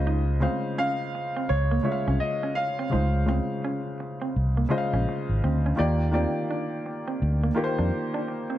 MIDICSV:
0, 0, Header, 1, 6, 480
1, 0, Start_track
1, 0, Tempo, 714286
1, 34, Time_signature, 4, 2, 24, 8
1, 5766, End_track
2, 0, Start_track
2, 0, Title_t, "Grand piano"
2, 0, Program_c, 0, 0
2, 528, Note_on_c, 0, 77, 92
2, 1002, Note_on_c, 0, 73, 81
2, 1015, Note_off_c, 0, 77, 0
2, 1451, Note_off_c, 0, 73, 0
2, 1479, Note_on_c, 0, 75, 72
2, 1716, Note_on_c, 0, 77, 89
2, 1724, Note_off_c, 0, 75, 0
2, 2168, Note_off_c, 0, 77, 0
2, 5766, End_track
3, 0, Start_track
3, 0, Title_t, "Grand piano"
3, 0, Program_c, 1, 0
3, 0, Control_c, 1, 64, 127
3, 0, Note_on_c, 1, 49, 75
3, 0, Note_on_c, 1, 56, 68
3, 0, Note_on_c, 1, 65, 66
3, 0, Note_on_c, 1, 72, 67
3, 0, Note_on_c, 1, 75, 82
3, 244, Note_off_c, 1, 49, 0
3, 247, Note_off_c, 1, 56, 0
3, 249, Note_off_c, 1, 65, 0
3, 251, Note_off_c, 1, 72, 0
3, 253, Note_off_c, 1, 75, 0
3, 269, Note_on_c, 1, 49, 73
3, 272, Note_on_c, 1, 56, 61
3, 278, Note_on_c, 1, 65, 62
3, 282, Note_on_c, 1, 72, 67
3, 287, Note_on_c, 1, 77, 80
3, 1178, Note_off_c, 1, 49, 0
3, 1180, Note_off_c, 1, 56, 0
3, 1183, Note_off_c, 1, 65, 0
3, 1185, Note_off_c, 1, 72, 0
3, 1187, Note_off_c, 1, 77, 0
3, 1228, Note_on_c, 1, 49, 65
3, 1231, Note_on_c, 1, 56, 61
3, 1236, Note_on_c, 1, 65, 56
3, 1241, Note_on_c, 1, 73, 64
3, 1246, Note_on_c, 1, 76, 57
3, 1288, Note_on_c, 1, 77, 76
3, 1293, Note_off_c, 1, 76, 0
3, 1911, Note_off_c, 1, 49, 0
3, 1913, Note_off_c, 1, 56, 0
3, 1915, Note_off_c, 1, 65, 0
3, 1917, Note_off_c, 1, 73, 0
3, 1941, Note_off_c, 1, 77, 0
3, 1946, Note_on_c, 1, 49, 62
3, 1951, Note_on_c, 1, 56, 57
3, 1955, Note_on_c, 1, 65, 55
3, 1961, Note_on_c, 1, 72, 60
3, 1963, Note_on_c, 1, 77, 65
3, 2177, Note_off_c, 1, 49, 0
3, 2179, Note_off_c, 1, 56, 0
3, 2182, Note_off_c, 1, 65, 0
3, 2184, Note_off_c, 1, 72, 0
3, 2186, Note_off_c, 1, 77, 0
3, 2190, Note_on_c, 1, 49, 62
3, 2193, Note_on_c, 1, 56, 54
3, 2198, Note_on_c, 1, 65, 51
3, 2202, Note_on_c, 1, 72, 54
3, 2207, Note_on_c, 1, 77, 65
3, 3099, Note_off_c, 1, 49, 0
3, 3100, Note_off_c, 1, 56, 0
3, 3103, Note_off_c, 1, 65, 0
3, 3105, Note_off_c, 1, 72, 0
3, 3107, Note_off_c, 1, 77, 0
3, 3150, Note_on_c, 1, 49, 76
3, 3155, Note_on_c, 1, 56, 70
3, 3160, Note_on_c, 1, 65, 74
3, 3165, Note_on_c, 1, 72, 70
3, 3167, Note_on_c, 1, 75, 70
3, 3211, Note_on_c, 1, 77, 83
3, 3213, Note_off_c, 1, 75, 0
3, 3832, Note_off_c, 1, 49, 0
3, 3834, Note_off_c, 1, 56, 0
3, 3837, Note_off_c, 1, 65, 0
3, 3839, Note_off_c, 1, 72, 0
3, 3862, Note_off_c, 1, 77, 0
3, 3869, Note_on_c, 1, 51, 73
3, 3874, Note_on_c, 1, 58, 67
3, 3879, Note_on_c, 1, 65, 66
3, 3881, Note_on_c, 1, 67, 67
3, 3883, Control_c, 1, 64, 0
3, 3888, Note_on_c, 1, 74, 84
3, 4012, Control_c, 1, 64, 127
3, 4097, Note_off_c, 1, 51, 0
3, 4101, Note_off_c, 1, 58, 0
3, 4103, Note_off_c, 1, 65, 0
3, 4104, Note_off_c, 1, 67, 0
3, 4107, Note_on_c, 1, 51, 70
3, 4108, Note_off_c, 1, 74, 0
3, 4112, Note_on_c, 1, 58, 63
3, 4115, Note_on_c, 1, 65, 65
3, 4120, Note_on_c, 1, 67, 62
3, 4125, Note_on_c, 1, 74, 75
3, 5017, Note_off_c, 1, 51, 0
3, 5020, Note_off_c, 1, 58, 0
3, 5021, Note_off_c, 1, 65, 0
3, 5024, Note_off_c, 1, 67, 0
3, 5026, Note_off_c, 1, 74, 0
3, 5070, Note_on_c, 1, 51, 78
3, 5073, Note_on_c, 1, 58, 72
3, 5077, Note_on_c, 1, 65, 68
3, 5083, Note_on_c, 1, 67, 72
3, 5087, Note_on_c, 1, 70, 68
3, 5132, Note_on_c, 1, 72, 92
3, 5134, Note_off_c, 1, 70, 0
3, 5752, Note_off_c, 1, 51, 0
3, 5754, Note_off_c, 1, 58, 0
3, 5756, Note_off_c, 1, 65, 0
3, 5759, Note_off_c, 1, 67, 0
3, 5766, Note_off_c, 1, 72, 0
3, 5766, End_track
4, 0, Start_track
4, 0, Title_t, "Clean electric guitar"
4, 0, Program_c, 2, 27
4, 47, Note_on_c, 2, 63, 78
4, 155, Note_off_c, 2, 63, 0
4, 287, Note_on_c, 2, 60, 66
4, 395, Note_off_c, 2, 60, 0
4, 526, Note_on_c, 2, 61, 73
4, 635, Note_off_c, 2, 61, 0
4, 917, Note_on_c, 2, 60, 65
4, 984, Note_off_c, 2, 60, 0
4, 1152, Note_on_c, 2, 58, 67
4, 1221, Note_off_c, 2, 58, 0
4, 1396, Note_on_c, 2, 61, 68
4, 1463, Note_off_c, 2, 61, 0
4, 1634, Note_on_c, 2, 61, 63
4, 1702, Note_off_c, 2, 61, 0
4, 1875, Note_on_c, 2, 60, 60
4, 1943, Note_off_c, 2, 60, 0
4, 1967, Note_on_c, 2, 63, 61
4, 2075, Note_off_c, 2, 63, 0
4, 2209, Note_on_c, 2, 60, 68
4, 2316, Note_off_c, 2, 60, 0
4, 2449, Note_on_c, 2, 61, 67
4, 2556, Note_off_c, 2, 61, 0
4, 2833, Note_on_c, 2, 60, 67
4, 2902, Note_off_c, 2, 60, 0
4, 3073, Note_on_c, 2, 58, 57
4, 3142, Note_off_c, 2, 58, 0
4, 3317, Note_on_c, 2, 61, 59
4, 3384, Note_off_c, 2, 61, 0
4, 3655, Note_on_c, 2, 60, 69
4, 3760, Note_off_c, 2, 60, 0
4, 3804, Note_on_c, 2, 61, 59
4, 3868, Note_off_c, 2, 61, 0
4, 3896, Note_on_c, 2, 63, 79
4, 4001, Note_off_c, 2, 63, 0
4, 4132, Note_on_c, 2, 60, 64
4, 4238, Note_off_c, 2, 60, 0
4, 4372, Note_on_c, 2, 62, 65
4, 4478, Note_off_c, 2, 62, 0
4, 4755, Note_on_c, 2, 60, 64
4, 4823, Note_off_c, 2, 60, 0
4, 4996, Note_on_c, 2, 58, 60
4, 5064, Note_off_c, 2, 58, 0
4, 5232, Note_on_c, 2, 62, 64
4, 5301, Note_off_c, 2, 62, 0
4, 5472, Note_on_c, 2, 62, 66
4, 5541, Note_off_c, 2, 62, 0
4, 5712, Note_on_c, 2, 60, 61
4, 5766, Note_off_c, 2, 60, 0
4, 5766, End_track
5, 0, Start_track
5, 0, Title_t, "Fingered electric bass"
5, 0, Program_c, 3, 33
5, 0, Note_on_c, 3, 37, 77
5, 310, Note_off_c, 3, 37, 0
5, 1010, Note_on_c, 3, 37, 85
5, 1198, Note_off_c, 3, 37, 0
5, 1396, Note_on_c, 3, 36, 84
5, 1466, Note_off_c, 3, 36, 0
5, 1972, Note_on_c, 3, 37, 81
5, 2277, Note_off_c, 3, 37, 0
5, 2932, Note_on_c, 3, 36, 77
5, 3119, Note_off_c, 3, 36, 0
5, 3316, Note_on_c, 3, 34, 76
5, 3386, Note_off_c, 3, 34, 0
5, 3557, Note_on_c, 3, 32, 69
5, 3627, Note_off_c, 3, 32, 0
5, 3655, Note_on_c, 3, 38, 75
5, 3841, Note_off_c, 3, 38, 0
5, 3893, Note_on_c, 3, 39, 76
5, 4198, Note_off_c, 3, 39, 0
5, 4851, Note_on_c, 3, 38, 87
5, 5039, Note_off_c, 3, 38, 0
5, 5235, Note_on_c, 3, 41, 68
5, 5305, Note_off_c, 3, 41, 0
5, 5766, End_track
6, 0, Start_track
6, 0, Title_t, "Muted clean electric guitar strokes"
6, 773, Note_on_c, 9, 29, 36
6, 840, Note_off_c, 9, 29, 0
6, 1246, Note_on_c, 9, 29, 42
6, 1313, Note_off_c, 9, 29, 0
6, 1731, Note_on_c, 9, 29, 38
6, 1798, Note_off_c, 9, 29, 0
6, 2689, Note_on_c, 9, 29, 40
6, 2757, Note_off_c, 9, 29, 0
6, 3174, Note_on_c, 9, 29, 37
6, 3241, Note_off_c, 9, 29, 0
6, 3419, Note_on_c, 9, 29, 39
6, 3486, Note_off_c, 9, 29, 0
6, 4611, Note_on_c, 9, 29, 38
6, 4678, Note_off_c, 9, 29, 0
6, 5089, Note_on_c, 9, 29, 38
6, 5156, Note_off_c, 9, 29, 0
6, 5567, Note_on_c, 9, 29, 41
6, 5634, Note_off_c, 9, 29, 0
6, 5766, End_track
0, 0, End_of_file